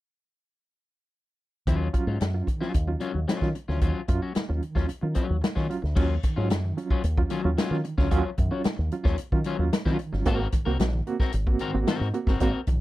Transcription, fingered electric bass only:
1.68 D#2
2.07 G#2
2.21 F#2
2.75 D#2
3.14 D#2
3.42 D#3
3.69 D2
3.82 D#2
4.09 F#2
4.36 muted fingered electric bass stroke
4.50 D#2
4.76 D#2
4.90 muted fingered electric bass stroke
5.03 D#3
5.30 D#2
5.56 D#3
5.83 D2
5.97 D#2
6.37 G#2
6.51 F#2
7.04 D#2
7.45 D#2
7.71 D#3
7.98 D2
8.12 D#2
8.39 F#2
8.66 muted fingered electric bass stroke
8.79 D#2
9.05 D#2
9.32 D#3
9.59 D#2
9.86 D#3
10.13 G1
10.26 G#1
10.66 C2
10.79 A#1
11.34 G#1
11.74 G#1
12.01 G#2
12.27 G1
12.41 G#1
12.68 A#1

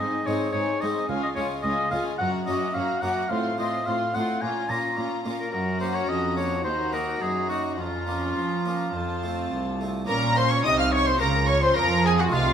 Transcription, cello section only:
0.26 G#2
0.53 G#2
0.82 G#2
1.09 C#2
1.36 C#2
1.64 C#2
1.92 C#2
2.20 F#2
2.47 F#2
2.75 F#2
3.02 F#2
3.30 A2
3.58 A2
3.86 A2
4.14 A2
4.42 A#2
4.69 A#2
4.97 A#2
5.25 A#2
5.53 F#2
6.09 F2
6.64 D#2
7.21 F#2
7.79 F2
8.36 F3
8.94 F2
9.52 C2
10.09 A#2
10.65 C3
11.21 C#3
11.77 F3
12.34 C3

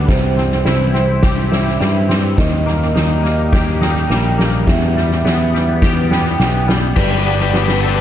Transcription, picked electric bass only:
0.09 C2
0.66 C2
1.81 G2
2.38 D#2
2.96 D#2
4.10 A#1
4.68 E2
5.25 E2
6.40 B1
6.97 G1

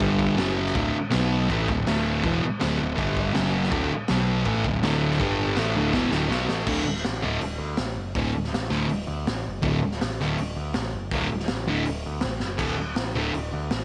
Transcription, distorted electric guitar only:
0.00 G2 D3 G3
0.36 F#2 C#3 F#3
0.75 D2 A2 D3
0.94 muted distorted electric guitar stroke
1.10 B2 F#3 B3
1.49 A2 E3 A3
1.68 D2 A2
1.87 D2 A2 D3
2.23 E2 B2 E3
2.43 muted distorted electric guitar stroke
2.60 D2 A2 D3
2.80 D2 A2
2.96 G2 D3 G3
3.33 F#2 C#3 F#3
3.71 D2 A2 D3
3.91 muted distorted electric guitar stroke
4.09 B2 F#3 B3
4.46 A2 E3 A3
4.66 D2 A2
4.83 D2 A2 D3
5.20 G2 D3 G3
5.56 A2 E3 A3
5.76 D2 A2 D3
5.95 E2 B2 E3
6.12 D2 A2 D3
6.29 B2 F#3 B3
6.47 A2 E3 A3
6.65 D2 A2 D3
7.22 D2 A2 D3
8.16 D2 A2 D3
8.70 D2 A2 D3
9.62 D2 A2 D3
10.21 D2 A2 D3
11.13 D2 A2 D3
11.67 D2 A2 D3
12.58 D2 A2 D3
13.15 D2 A2 D3

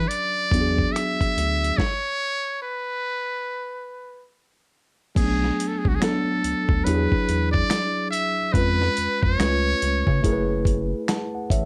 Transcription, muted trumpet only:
0.08 D5
0.92 E5
1.77 C#5
2.62 B4
5.17 G#4
5.67 A4
5.78 G#4
5.88 F#4
5.95 G#4
6.03 A4
6.84 B4
7.52 D5
8.10 E5
8.53 B4
9.23 C#5

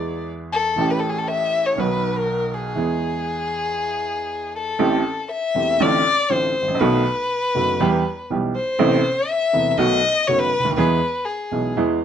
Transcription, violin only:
Already playing: D5
0.53 A4
0.91 B4
0.99 A4
1.09 G#4
1.18 A4
1.28 E5
1.66 C#5
1.80 B4
2.15 A#4
2.54 G#4
4.56 A4
5.31 E5
5.81 D5
6.31 C5
6.80 B4
8.56 C5
9.28 E5
9.71 E5
9.77 D#5
10.27 C#5
10.39 B4
10.76 B4
11.25 G#4

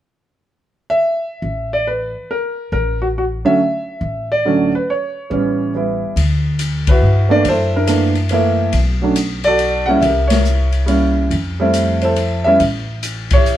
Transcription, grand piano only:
0.90 E5
1.73 D5
1.87 B4
2.31 A#4
2.72 A#4
3.02 F#4
3.18 F#4
3.45 D3 F#3 A3 C#4 E5
4.32 D5
4.45 D3 F#3 A3 C#4
4.75 B4
4.90 C#5
5.30 E3 G3 B3 C#4
5.75 E3 G3 B3 E4
6.89 E4 F#4 B4
7.29 E3 A3 A#3 D4 D5
7.48 E4 A4 C5
7.76 D4 E4 A#4
7.87 E3 A3 A#3 D4
8.31 E3 A3 A#3 E4
9.02 F#3 A3 C#4 D4
9.44 F#4 A4 D5
9.86 G3 A#3 C#4 E4 F#5
10.01 G4 E5
10.05 A#4
10.28 C#5
10.32 E4 A#4
10.86 G3 A#3 C#4 E4
11.60 G3 A3 C4 E4
12.02 E4 A4 C5
12.44 G3 B3 C#4 E4 E5
13.33 E4 G4 C#5

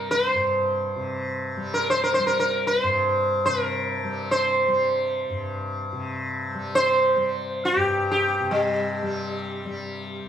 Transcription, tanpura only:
Already playing: G2 C3 G3
0.34 G2
0.96 C3
1.57 G3
2.19 G3
2.84 G2
3.46 C3
4.04 G3
4.68 G3
5.30 G2
5.93 C3
6.55 G3
7.16 G3
7.76 G2
8.40 C3
9.03 G3
9.66 G3

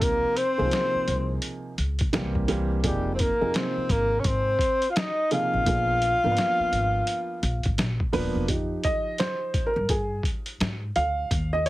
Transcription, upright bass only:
Already playing: C#2
0.59 C2
0.94 muted upright bass stroke
1.08 C2
1.78 C#2
2.13 C2
2.84 F1
3.42 F1
3.77 muted upright bass stroke
3.90 G#1
4.25 G#1
5.54 A1
5.66 A#1
6.24 G#1
6.59 muted upright bass stroke
6.72 G#1
7.43 A#1
7.66 G#1
7.78 A#1
8.13 D#1
8.35 E1
8.48 F2
9.76 G2
9.89 G2
10.61 G#2
10.96 D2
11.31 D#2

